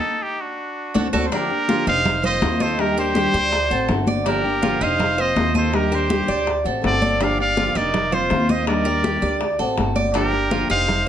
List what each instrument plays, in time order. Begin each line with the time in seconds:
Already playing: trumpet D#4, muted trumpet A4
0.22 trumpet D#4, muted trumpet G4
0.41 trumpet D4, muted trumpet F#4
0.94 upright bass D2, nylon-string guitar A3 C4 D4, cuban tres D4 F#4 A4, low bongo, high conga
1.13 upright bass D2, nylon-string guitar A3 C4 D4, cuban tres D4 F#4 A4, low bongo, high conga
1.25 trumpet A4, muted trumpet C5
1.31 nylon-string guitar D3 F3 A#3 D4 G4, cuban tres D4, trumpet G4, muted trumpet A#4, high bongo, high conga
1.49 nylon-string guitar A#3 D4 G4, high conga
1.67 nylon-string guitar D3 F3 A#3 D4 G4, cuban tres F4, high bongo, high conga
1.86 upright bass F1, nylon-string guitar A#3 D4 G4, cuban tres D#4, trumpet C5, muted trumpet F5
2.05 muted nylon-string guitar stroke, high bongo, high conga, low conga
2.23 nylon-string guitar A#3 C4 F4, cuban tres C5, trumpet C5, muted trumpet D#5, high conga, low conga
2.42 upright bass D#2, nylon-string guitar D#3 A#3 C4 F4, high bongo, low bongo, high conga
2.60 trumpet A4, muted trumpet C5, cuban tres D#5, high conga
2.78 nylon-string guitar D#3 G3 D4 G4, trumpet G4, muted trumpet A#4, high bongo, high conga
2.96 nylon-string guitar G3 D4 G4, trumpet G4, cuban tres A#4, muted trumpet C5, high bongo, high conga
3.15 nylon-string guitar D#3 G3 D4 G4, cuban tres G4, high bongo, high conga
3.33 upright bass D2, nylon-string guitar G3 D4 G4, cuban tres D5, high bongo, high conga
3.52 muted nylon-string guitar stroke, high bongo, high conga
3.70 upright bass A1, nylon-string guitar A3 C4 F#4, cuban tres A4, high conga
3.88 upright bass G1, nylon-string guitar D3 A3 C4 F#4, high bongo, low bongo, high conga
4.07 cuban tres D5, high bongo, high conga
4.25 nylon-string guitar D3 F3 A#3 D4 G4, cuban tres D4, trumpet G4, muted trumpet A#4, high bongo, high conga
4.44 nylon-string guitar A#3 D4 G4, high conga
4.62 nylon-string guitar D3 F3 A#3 D4 G4, cuban tres F4, high bongo, high conga
4.81 upright bass F1, nylon-string guitar A#3 D4 G4, cuban tres D#4, trumpet C5, muted trumpet F5
4.99 muted nylon-string guitar stroke, high bongo, high conga, low conga
5.17 nylon-string guitar A#3 C4 F4, cuban tres C5, trumpet C5, muted trumpet D#5, high conga
5.35 upright bass D#2, nylon-string guitar D#3 A#3 C4 F4, high bongo, low bongo, high conga
5.55 trumpet A4, muted trumpet C5, cuban tres D#5, high conga
5.72 nylon-string guitar D#3 G3 D4 G4, trumpet G4, muted trumpet A#4, high bongo, high conga
5.91 nylon-string guitar G3 D4 G4, trumpet G4, cuban tres A#4, high bongo, high conga
5.95 muted trumpet C5
6.09 nylon-string guitar D#3 G3 D4 G4, cuban tres G4, high bongo, high conga
6.27 upright bass D2, nylon-string guitar G3 D4 G4, cuban tres D5, high bongo, high conga
6.46 muted nylon-string guitar stroke, high bongo, high conga
6.64 upright bass A1, nylon-string guitar A3 C4 F#4, cuban tres A4, high conga
6.82 upright bass G1, nylon-string guitar D3 A3 C4 F#4, trumpet A4, high bongo, low bongo, high conga
6.86 muted trumpet D5
7.02 cuban tres D5, high bongo, high conga
7.20 nylon-string guitar D3 F3 A#3 D4 G4, cuban tres D4, trumpet D5, muted trumpet F5, high bongo
7.38 nylon-string guitar A#3 D4 G4, trumpet D5, muted trumpet F5, high conga
7.56 nylon-string guitar D3 F3 A#3 D4 G4, cuban tres F4, high bongo, high conga
7.74 upright bass F1, nylon-string guitar A#3 D4 G4, cuban tres D#4, trumpet A#4, muted trumpet D5
7.93 muted nylon-string guitar stroke, high bongo, high conga, low conga
8.12 nylon-string guitar A#3 C4 F4, trumpet F4, cuban tres C5, muted trumpet C5, high conga, low conga
8.30 upright bass D#2, nylon-string guitar D#3 A#3 C4 F4, high bongo, low bongo, high conga
8.49 trumpet C5, cuban tres D#5, muted trumpet D#5, high conga
8.66 nylon-string guitar D#3 G3 D4 G4, trumpet A#4, muted trumpet D5, high bongo, high conga
8.85 nylon-string guitar G3 D4 G4, cuban tres A#4, high bongo, high conga
9.03 nylon-string guitar D#3 G3 D4 G4, cuban tres G4, high bongo, high conga
9.22 upright bass D2, nylon-string guitar G3 D4 G4, cuban tres D5, high bongo, high conga
9.41 muted nylon-string guitar stroke, high bongo, high conga
9.59 upright bass A1, nylon-string guitar A3 C4 F#4, cuban tres A4, high conga
9.76 upright bass G1, nylon-string guitar D3 A3 C4 F#4, high bongo, low bongo, high conga
9.96 cuban tres D5, high bongo, high conga
10.13 nylon-string guitar D3 F3 A#3 D4 G4, cuban tres D4, trumpet G4, muted trumpet A#4, high bongo, high conga
10.32 nylon-string guitar A#3 D4 G4, high conga
10.51 nylon-string guitar D3 F3 A#3 D4 G4, cuban tres F4, high bongo, high conga
10.69 upright bass F1, nylon-string guitar A#3 D4 G4, cuban tres D#4, trumpet C5, muted trumpet F5
10.88 muted nylon-string guitar stroke, high bongo, high conga, low conga